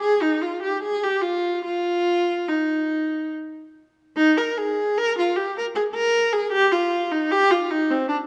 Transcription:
0.01 0.21 G#4 medium
0.22 0.42 D#4 medium
0.42 0.63 F4 medium
0.62 0.82 G4 medium
0.83 1.03 G#4 medium
1.03 1.23 G4 medium
1.22 1.63 F4 medium
1.65 2.47 F4 loud
2.49 3.32 D#4 medium
4.17 4.37 D#4 loud
4.37 4.57 A#4 medium
4.58 4.97 G#4 medium
4.98 5.17 A#4 loud
5.19 5.37 F4 medium
5.36 5.56 G4 medium
5.58 5.65 A#4 medium
5.75 5.83 G#4 medium
5.94 6.32 A#4 loud
6.33 6.52 G#4 medium
6.52 6.71 G4 loud
6.72 7.10 F4 medium
7.12 7.30 D#4 medium
7.31 7.50 G4 loud
7.51 7.70 F4 medium
7.71 7.89 D#4 medium
7.91 8.08 C4 medium
8.09 8.16 D4 medium

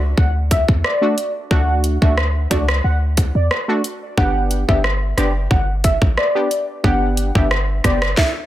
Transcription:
0.00 0.14 C#2 loud
0.18 0.65 D2 loud
0.18 0.30 F#5 medium
0.18 kick medium
0.51 0.63 E5 medium
0.51 kick medium
0.51 closed hi-hat medium
0.68 0.83 E2 medium
0.68 kick medium
0.84 1.32 D5 medium
0.84 cross-stick medium
1.01 1.15 A3 medium
1.01 1.15 D4 medium
1.01 1.15 F#4 medium
1.18 closed hi-hat medium
1.51 1.98 D2 loud
1.51 1.98 A3 medium
1.51 1.98 D4 medium
1.51 1.98 F#4 loud
1.51 1.75 F#5 medium
1.51 kick loud
1.84 closed hi-hat medium
2.01 2.47 D2 loud
2.01 2.15 A3 medium
2.01 2.15 D4 medium
2.01 2.16 F#4 medium
2.01 2.13 E5 medium
2.01 kick medium
2.18 cross-stick medium
2.50 2.81 C#2 loud
2.50 2.66 A3 medium
2.50 2.66 D4 medium
2.50 2.66 F#4 medium
2.50 2.63 D5 medium
2.50 kick medium
2.50 closed hi-hat medium
2.69 cross-stick loud
2.84 3.31 D2 medium
2.84 2.97 F#5 medium
3.17 kick medium
3.17 closed hi-hat medium
3.35 3.49 E2 medium
3.35 3.46 D5 medium
3.51 cross-stick medium
3.68 3.82 A3 medium
3.68 3.82 D4 medium
3.68 3.82 F#4 medium
3.84 closed hi-hat medium
4.17 4.65 G1 loud
4.17 4.64 B3 medium
4.17 4.64 D4 medium
4.17 4.65 G4 loud
4.17 4.41 F#5 loud
4.17 kick loud
4.51 closed hi-hat medium
4.68 5.14 G1 medium
4.68 4.82 B3 medium
4.68 4.82 D4 medium
4.68 4.82 G4 medium
4.68 4.80 E5 medium
4.68 kick medium
4.84 cross-stick medium
5.17 5.48 F#1 medium
5.17 5.33 B3 medium
5.17 5.33 D4 medium
5.17 5.33 G4 medium
5.17 5.30 D5 medium
5.17 cross-stick medium
5.17 closed hi-hat medium
5.51 5.98 G1 loud
5.51 5.63 F#5 medium
5.51 kick medium
5.84 5.96 E5 medium
5.84 kick medium
5.84 closed hi-hat medium
6.02 6.16 A1 medium
6.02 kick medium
6.18 6.66 D5 medium
6.18 cross-stick medium
6.35 6.49 B3 medium
6.35 6.49 D4 medium
6.35 6.49 G4 medium
6.51 closed hi-hat medium
6.84 7.31 G1 loud
6.84 7.31 B3 medium
6.84 7.31 D4 medium
6.84 7.31 G4 loud
6.84 7.08 F#5 medium
6.84 kick loud
7.17 closed hi-hat medium
7.35 7.80 G1 loud
7.35 7.49 B3 medium
7.35 7.49 D4 medium
7.35 7.49 G4 medium
7.35 7.47 E5 medium
7.35 kick medium
7.51 cross-stick medium
7.84 8.14 F#1 medium
7.84 7.99 B3 medium
7.84 7.99 D4 medium
7.84 8.00 G4 medium
7.84 7.97 D5 medium
7.84 kick medium
7.84 cross-stick medium
7.84 closed hi-hat medium
8.02 cross-stick loud
8.17 8.30 E5 medium
8.17 kick loud
8.17 snare medium

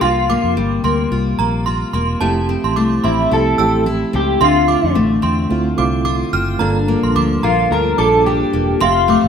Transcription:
0.00 0.35 C2 medium
0.00 2.21 C3 medium
0.00 0.57 F3 medium
0.00 0.29 A#3 medium
0.00 0.53 F4 loud
0.00 1.11 F4 medium
0.00 0.29 C6 loud
0.29 0.83 A#3 medium
0.29 0.55 D6 medium
0.44 0.54 F2 medium
0.56 0.78 G1 medium
0.56 2.28 G3 medium
0.84 1.06 D2 loud
0.84 1.38 A#3 medium
0.84 1.10 C6 medium
1.11 1.33 C2 medium
1.11 1.67 F4 medium
1.39 1.83 A#1 loud
1.39 1.93 A#3 medium
1.39 1.65 A#5 medium
1.66 2.21 F4 medium
1.66 1.80 C6 medium
1.93 2.15 E1 loud
1.93 2.27 A#3 medium
1.93 2.08 C6 medium
2.20 2.55 F1 loud
2.20 4.41 F3 medium
2.20 2.94 A3 loud
2.20 2.94 C4 medium
2.20 2.95 E4 medium
2.20 3.30 E4 medium
2.20 2.95 G4 loud
2.20 2.47 A5 loud
2.49 3.04 C4 medium
2.64 2.76 A1 medium
2.64 2.76 C6 medium
2.76 2.98 C2 medium
2.76 4.95 A3 medium
2.76 3.02 D6 medium
3.04 3.26 A1 loud
3.04 3.59 C4 medium
3.04 3.32 E4 medium
3.04 3.18 C6 medium
3.30 3.54 C2 loud
3.30 3.49 A3 medium
3.30 3.49 C4 medium
3.30 3.85 E4 medium
3.30 3.50 E4 medium
3.30 3.50 G4 medium
3.30 3.83 A4 loud
3.58 4.03 A1 medium
3.58 4.13 A3 medium
3.58 4.14 C4 medium
3.58 4.13 C4 medium
3.58 4.14 E4 medium
3.58 4.15 G4 medium
3.58 3.73 E6 medium
3.86 4.41 E4 medium
4.13 4.36 C#2 loud
4.13 4.68 C4 medium
4.13 4.43 G4 loud
4.40 4.75 D2 loud
4.40 7.91 D3 medium
4.40 5.14 A3 medium
4.40 5.14 C4 medium
4.40 5.50 F4 medium
4.40 5.15 F4 medium
4.40 5.15 E5 medium
4.40 4.67 C6 loud
4.44 4.94 F4 loud
4.68 5.21 C4 medium
4.68 4.94 D6 medium
4.83 4.97 F2 loud
4.95 5.18 A1 loud
4.95 6.67 A3 medium
5.22 5.45 E2 loud
5.22 5.77 C4 medium
5.22 5.49 C6 medium
5.50 5.73 D2 loud
5.50 5.69 A3 medium
5.50 5.69 C4 medium
5.50 5.69 E4 medium
5.50 6.05 F4 medium
5.50 5.70 F4 loud
5.77 6.22 C2 medium
5.77 6.33 A3 medium
5.77 6.33 C4 medium
5.77 6.32 C4 medium
5.77 6.34 E4 medium
5.77 6.34 F4 medium
5.77 6.04 D6 medium
6.05 6.61 F4 medium
6.05 6.20 D6 medium
6.33 6.55 F#1 loud
6.33 6.67 C4 medium
6.33 6.48 F6 medium
6.59 6.95 G1 loud
6.59 8.80 G2 medium
6.59 7.33 A#3 loud
6.59 7.34 D4 medium
6.59 7.71 D4 medium
6.59 7.34 F4 medium
6.59 7.35 A4 loud
6.59 6.86 A#5 loud
6.88 7.42 A#3 medium
7.03 7.13 A#1 medium
7.03 7.15 C6 medium
7.15 7.38 D2 loud
7.15 9.28 F3 medium
7.15 7.42 D6 medium
7.43 7.65 A#1 loud
7.43 7.97 A#3 medium
7.43 7.72 F4 loud
7.43 7.58 A#5 medium
7.70 7.93 D2 loud
7.70 7.89 A#3 medium
7.70 7.89 D4 medium
7.70 8.25 D4 medium
7.70 7.90 F4 medium
7.70 7.90 A4 medium
7.70 7.98 A#4 loud
7.97 8.43 A#1 loud
7.97 8.53 A#3 medium
7.97 8.52 A#3 medium
7.97 8.53 D4 medium
7.97 8.54 F4 medium
7.97 8.06 G#4 medium
7.97 8.26 A4 loud
7.97 8.13 D6 medium
8.06 8.57 A4 medium
8.26 8.81 D4 medium
8.26 8.82 G4 loud
8.53 8.76 E1 medium
8.53 8.87 A#3 medium
8.80 9.16 F1 loud
8.80 9.28 F2 loud
8.80 9.28 A3 medium
8.80 9.28 C4 medium
8.80 9.28 F4 medium
8.80 9.28 G4 medium
8.80 9.28 E5 medium
8.80 9.07 C6 loud
9.08 9.28 A3 medium
9.08 9.28 D6 medium
9.24 9.28 A1 loud

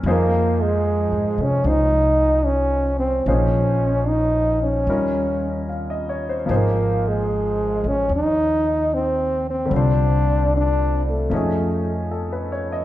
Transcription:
0.03 1.07 F2 medium
0.03 3.26 F3 soft
0.03 3.26 A#3 soft
0.03 3.26 D#4 soft
0.03 3.27 G#4 soft
0.07 0.65 A#3 medium
0.07 1.65 C5 medium
0.63 1.44 G#3 medium
1.12 1.37 G#2 soft
1.38 1.63 C3 medium
1.43 1.70 C#4 medium
1.63 3.21 C2 medium
1.63 3.25 G#3 soft
1.63 3.26 F4 soft
1.63 3.27 C5 soft
1.68 2.47 D#4 medium
2.45 2.99 C#4 medium
3.00 3.28 C4 medium
3.26 4.83 A#1 medium
3.26 4.88 F3 soft
3.26 4.88 A#3 soft
3.26 4.10 C#4 medium
3.26 4.88 D#4 soft
3.26 4.88 G#4 soft
3.26 4.88 C5 soft
4.08 4.62 D#4 medium
4.63 5.65 C#4 medium
4.87 6.45 D#2 medium
4.87 6.50 G3 soft
4.87 6.50 C#4 soft
4.87 6.46 D#4 soft
4.87 6.50 F4 soft
4.87 6.50 A#4 soft
5.69 6.07 F5 soft
5.90 6.24 D#5 soft
6.09 6.34 C#5 soft
6.29 6.49 C5 soft
6.46 7.80 G#1 medium
6.46 9.70 F3 soft
6.46 9.70 A#3 soft
6.46 9.71 D#4 soft
6.46 9.71 G#4 soft
6.51 9.72 C5 soft
6.55 7.10 A#3 medium
7.09 7.90 G#3 medium
7.84 8.08 A1 medium
7.88 8.12 C#4 medium
8.09 9.67 D#2 medium
8.16 8.96 D#4 medium
8.94 9.47 C4 medium
9.50 9.76 C4 medium
9.66 11.29 D3 soft
9.66 11.30 G3 soft
9.71 11.27 C2 medium
9.71 11.31 C4 soft
9.71 10.53 D4 medium
9.71 11.33 F4 soft
9.76 11.34 C5 soft
10.57 11.05 D4 medium
11.11 12.10 A3 medium
11.30 12.85 F2 medium
11.30 12.85 F3 soft
11.30 12.85 A3 soft
11.30 12.85 C#4 soft
11.30 12.85 D#4 soft
11.35 12.85 G#4 soft
12.11 12.49 A4 soft
12.32 12.66 B4 soft
12.52 12.76 C#5 soft
12.72 12.85 D#5 soft

